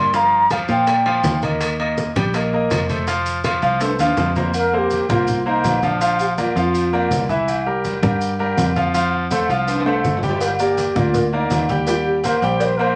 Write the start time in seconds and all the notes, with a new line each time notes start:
Already playing: G2 A#3 A#4 D5 C6
0.13 F3 F4 F5 A#5, high bongo, high conga, maracas
0.32 high conga
0.50 F3 F4 F5, high bongo, high conga, high timbale, low timbale, maracas
0.68 A#2 F3 F4 F5 G5, high bongo, maracas
0.87 A#3 A#4 D5, high bongo, high conga, high timbale, maracas
1.05 F3 F4 F5, high bongo, high conga, high timbale
1.24 D#2, high bongo, low bongo, high conga, low timbale, maracas
1.42 A#3 A#4 D#5, high bongo, high conga, high timbale, maracas
1.61 high bongo, high conga, high timbale, maracas
1.79 A#3 A#4 D#5, high conga, high timbale
1.97 high bongo, high conga, low timbale, maracas
2.16 A#1 G3 G4 G5, high conga, low conga, high timbale, maracas
2.34 A#3 A#4 D#5, high bongo, high conga, high timbale, maracas
2.53 A#3 A#4 D#5, high conga
2.71 F1, high bongo, low bongo, high conga, high timbale, low timbale, maracas
2.89 A3 A4 C5, high conga, high timbale, maracas
3.07 F3 F4 F5, high bongo, high conga, maracas
3.26 high conga, maracas
3.44 F3 F4 F5, high bongo, high conga, high timbale, low timbale, maracas
3.62 C2 F3 F4 F5, high bongo, maracas
3.80 A3 A4 C5, high bongo, high conga, high timbale, maracas
3.99 D#2 F3 F4 F5, high bongo, high conga, high timbale, maracas
4.17 F2, high bongo, low bongo, high conga, low timbale, maracas
4.36 A#3 A#4 C5, high bongo, high conga, low timbale, maracas
4.54 A#4, high conga, low agogo, maracas
4.73 A#3 A4 A#4 C5, high conga
4.78 G4
4.90 high conga, low timbale, low agogo, maracas
5.09 C2 A#3 F4 A#4 C5, high conga, low conga, low agogo, maracas
5.27 high conga, low conga, maracas
5.46 A#3 D#4 A#4 C5, high conga, low agogo
5.64 A#1, high conga, low timbale, low agogo, maracas
5.82 F3 D4 F4 F5, high conga, maracas
6.01 F3 F4 F5, high conga, low agogo, maracas
6.19 G4, high conga, maracas
6.38 A#3 F4 A#4 D5, high conga, low timbale, low agogo, maracas
6.56 F2 F3 F4 F5, maracas
6.75 high conga, low agogo, maracas
6.93 A#3 A#4 D5, high conga, low agogo
7.11 C2, high conga, low timbale, maracas
7.29 E3 E4 E5, high conga, maracas
7.48 high conga, low agogo, maracas
7.66 G3 G4 A#4, high conga
7.84 high conga, low timbale, low agogo, maracas
8.02 G2 G3 G4 A#4, high conga, low conga, low agogo, maracas
8.21 high conga, maracas
8.39 G3 G4 A#4, high conga, low agogo
8.57 F2, high conga, low timbale, low agogo, maracas
8.76 F3 F4 F5, high conga, maracas
8.94 F3 F4 F5, high conga, low agogo, maracas
9.13 high conga
9.31 A3 A4 C5, high conga, low timbale, low agogo, maracas
9.49 C2 F3 F4 F5, maracas
9.68 high conga, high timbale, low agogo, maracas
9.80 high timbale
9.86 A3 A4 C5, high conga, low agogo
10.04 G1, high conga, low timbale, maracas
10.17 low timbale
10.23 G3 G4 G5, high conga, maracas
10.29 low timbale
10.41 A#4, cowbell, high conga, low agogo, maracas
10.59 A#3 G4 A#4 D5, high conga, maracas
10.78 cowbell, high conga, low timbale, low agogo, maracas
10.95 D2 A#3 F4 A#4 D5, high conga, low conga, low agogo, maracas
11.14 cowbell, high conga, low conga, maracas
11.32 A#3 D#4 A#4 D5, high conga, low agogo
11.50 D#2, cowbell, high conga, low timbale, low agogo, maracas
11.69 G3 G4 G5, cowbell, high conga, maracas
11.87 G3 F4 G4 G5, cowbell, high conga, low agogo, maracas
12.06 G4, high conga
12.24 A#3 A#4 C5, cowbell, high conga, low timbale, low agogo, maracas
12.42 A#1 G3 G4 C5 G5, cowbell, maracas
12.60 D5, cowbell, high conga, low agogo, maracas
12.65 C5
12.77 A#3 A#4 C5, high conga, low agogo
12.82 C5